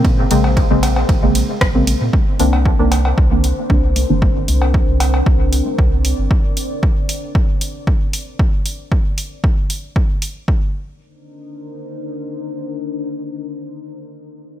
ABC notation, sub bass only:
X:1
M:4/4
L:1/16
Q:1/4=115
K:Cm
V:1 name="Sub bass" clef=bass
B,,2 B,,,3 B,,,3 B,,,3 z B,,,3 B,, | z2 C,,3 C,,3 C,,3 z C,,3 G,,,- | G,,,2 C,,3 C,,3 C,,3 z C,,3 G,,, | z16 |
z16 | z16 | z16 |]